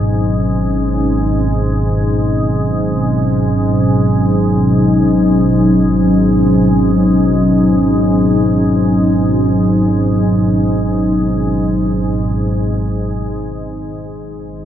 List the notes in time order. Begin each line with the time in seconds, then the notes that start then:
Already playing: G#1 G#2 B2 F#3 C#4 D#4
13.72 G#1 G#2